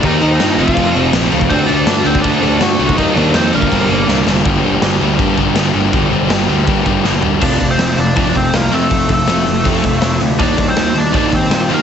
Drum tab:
CC |x-x-x-x-x-x-x-x-|x-x-x-x-x-x-x-x-|x-x-x-x-x-x-----|x---x---x---x---|
HH |----------------|----------------|----------------|----------------|
SD |----o-------o---|----o-------o---|----o-------o-o-|----o-------o---|
FT |----------------|----------------|----------------|----------------|
BD |o------oo------o|o------oo------o|o------oo-------|o-------o-o-----|

CC |x---x---x-------|x---------------|----------------|----------------|
HH |----------------|--o-o-o-o-o-o-o-|o-o-o-o-o-o-o-o-|o-o-o-o-o-o-o-o-|
SD |----o-------o---|----o-------o---|----o-------o---|----o-------o---|
FT |--------------o-|----------------|----------------|----------------|
BD |o-------o-o-----|o-o-----o-o-----|o-o-----o-o-----|o-o-----o-o-----|